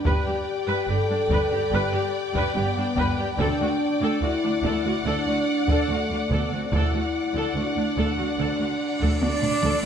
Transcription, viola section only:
0.05 B4
0.27 G4
0.68 B4
0.89 G4
1.10 D4
1.31 B4
1.52 G4
1.74 B4
1.94 G4
2.37 B4
2.57 G4
2.77 D4
2.98 B4
3.19 G4
3.39 A4
3.61 F#4
4.03 A4
4.24 F#4
4.44 D4
4.65 A4
4.86 F#4
5.06 A4
5.27 F#4
5.69 A4
5.90 F#4
6.12 D4
6.31 A4
6.53 F#4
6.74 A4
6.95 F#4
7.37 A4
7.56 F#4
7.77 D4
7.97 A4
8.18 F#4
8.39 A4
8.60 F#4
9.01 A4
9.23 F#4
9.43 D4
9.64 A4

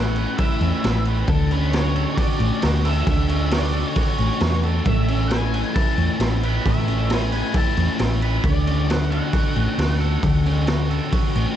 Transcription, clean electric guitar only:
Already playing: A3 C#4 E4 B4
0.19 B4
0.39 E4
0.62 C#4
0.84 E4
1.07 B4
1.30 D3
1.52 C#4
1.73 F#4
1.95 A4
2.19 F#4
2.41 C#4
2.63 F#4
2.85 A4
3.08 D3
3.30 C#4
3.53 F#4
3.74 A4
3.96 F#4
4.18 C#4
4.42 F#4
4.65 A4
4.87 A3
5.10 C#4
5.32 E4
5.54 B4
5.76 E4
5.98 C#4
6.20 E4
6.44 B4
6.66 A3
6.88 C#4
7.11 E4
7.32 B4
7.56 E4
7.77 C#4
8.00 E4
8.23 B4
8.45 D3
8.67 C#4
8.90 F#4
9.12 A4
9.32 F#4
9.55 C#4
9.79 F#4
10.01 A4
10.23 D3
10.46 C#4
10.68 F#4
10.90 A4
11.13 F#4
11.36 C#4

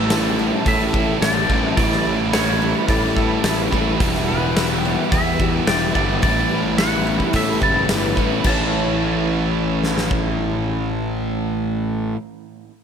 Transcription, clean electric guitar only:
Already playing: A4
0.68 E5
1.22 D5
1.77 D5
2.33 C#5
2.90 D5
3.16 A4
4.28 B4
5.12 E5
5.67 D5
5.95 D5
6.23 D5
6.78 F#5
7.36 E5
7.63 A5
8.46 A5

